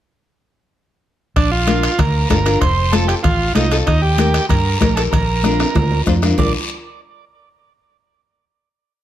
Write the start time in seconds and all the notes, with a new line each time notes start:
1.36 A#1 D4, bombo low, bombo rim, high conga, high timbale, long guiro
1.51 F4
1.67 D4 F4 A#4, bombo rim, high conga, high timbale, short guiro
1.83 bombo rim, high timbale, short guiro
1.98 D2 A#4, bombo low, bombo rim, high conga, low conga, high timbale, long guiro
2.29 G1 D4 F4 A4 A#4, bombo low, bombo rim, high conga, high timbale, low timbale, short guiro
2.45 D4 F4 A#4, bombo rim, high timbale, short guiro
2.61 F1 C5, bombo low, bombo rim, high conga, high timbale, long guiro
2.92 C4 F4 A4, bombo rim, high conga, high timbale, short guiro
3.08 G4, bombo rim, high timbale, short guiro
3.23 A1 F4, bombo low, bombo rim, high conga, low conga, high timbale, long guiro
3.55 C2 C4 D#4 F4 A4, bombo rim, high conga, high timbale, low timbale, short guiro
3.71 C4 F4 A4, bombo rim, high timbale, short guiro
3.87 D#2 D#4, bombo low, bombo rim, high conga, high timbale, long guiro
4.02 G4
4.18 D#4 G4 A#4, bombo rim, high conga, high timbale, short guiro
4.34 bombo rim, high timbale, short guiro
4.49 G2 A#4, bombo low, bombo rim, high conga, low conga, high timbale, long guiro
4.80 A#1 D#4 G4 A#4, bombo low, bombo rim, high conga, high timbale, low timbale, short guiro
4.96 D#4 G4 A4 A#4, bombo rim, high timbale, short guiro
5.11 A#1 A#4, bombo low, bombo rim, high conga, low conga, high timbale, long guiro
5.44 D4 F4 A#4, bombo rim, high conga, high timbale, short guiro
5.60 bombo rim, high timbale, short guiro
5.75 D2, bombo low, bombo rim, high conga, low conga, low timbale, long guiro
5.91 low timbale
6.06 F2 D4 F4 C5, bombo low, bombo rim, high conga, low timbale, short guiro
6.22 D4 F4 A#4, bombo rim, low timbale, short guiro
6.38 A#1 D4 F4 A#4 D5, bombo low, low conga, low timbale, long guiro